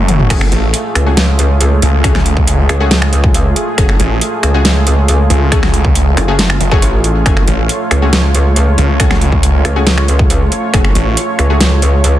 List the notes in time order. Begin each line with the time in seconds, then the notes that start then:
Already playing: F#1 A3 F#4 C#5, noise sweep
0.08 closed hi-hat, mid tom
0.19 F#1, mid tom
0.30 F#1 A3 C#4 F4 F#4 G#4, finger snap, kick, closed hi-hat, crash
0.41 finger snap
0.52 A1, closed hi-hat
0.74 closed hi-hat
0.95 C#2, finger snap, closed hi-hat
1.06 A3 C#4 F#4 G#4
1.17 snare, closed hi-hat
1.39 closed hi-hat
1.61 closed hi-hat
1.82 C#2, closed hi-hat
2.04 A3 C#4 F#4 G#4, finger snap, kick, closed hi-hat
2.15 finger snap, snare
2.26 closed hi-hat
2.37 kick
2.48 closed hi-hat
2.69 C#2, finger snap, closed hi-hat
2.80 A3 C#4 F#4 G#4
2.91 snare, closed hi-hat
3.02 finger snap
3.13 closed hi-hat
3.24 kick
3.34 closed hi-hat
3.56 closed hi-hat
3.78 F#1 A3 C#4 F#4 G#4, finger snap, kick, closed hi-hat
3.89 finger snap
4.00 A1, closed hi-hat
4.21 closed hi-hat
4.43 C#2, finger snap, closed hi-hat
4.54 A3 C#4 F#4 G#4
4.65 snare, closed hi-hat
4.87 closed hi-hat
5.08 closed hi-hat
5.30 C#2, closed hi-hat
5.52 A3 C#4 F#4 G#4, finger snap, kick, closed hi-hat
5.63 finger snap, snare
5.74 closed hi-hat
5.85 kick
5.95 closed hi-hat
6.17 F#1, finger snap, closed hi-hat
6.28 A3 C#4 F#4 G#4
6.39 snare, closed hi-hat
6.50 finger snap
6.61 F#1, closed hi-hat
6.72 A3 C#4 F#4 G#4, kick
6.82 A1, closed hi-hat
7.04 closed hi-hat
7.26 F#1 A3 C#4 F#4 G#4 C#5, finger snap, kick, closed hi-hat
7.37 finger snap
7.48 A1, closed hi-hat
7.69 closed hi-hat
7.91 C#2, finger snap, closed hi-hat
8.02 A3 C#4 F#4 G#4
8.13 snare, closed hi-hat
8.35 closed hi-hat
8.56 closed hi-hat
8.78 C#2, closed hi-hat
9.00 A3 C#4 F#4 G#4, finger snap, kick, closed hi-hat
9.11 finger snap, snare
9.21 closed hi-hat
9.32 kick
9.43 closed hi-hat
9.65 C#2, finger snap, closed hi-hat
9.76 A3 C#4 F#4 G#4
9.87 snare, closed hi-hat
9.98 finger snap
10.08 closed hi-hat
10.19 kick
10.30 closed hi-hat
10.52 closed hi-hat
10.74 F#1 A3 C#4 F#4 G#4, finger snap, kick, closed hi-hat
10.85 finger snap
10.95 A1, closed hi-hat
11.17 closed hi-hat
11.39 C#2, finger snap, closed hi-hat
11.50 A3 C#4 F#4 G#4
11.61 snare, closed hi-hat
11.82 closed hi-hat
12.04 closed hi-hat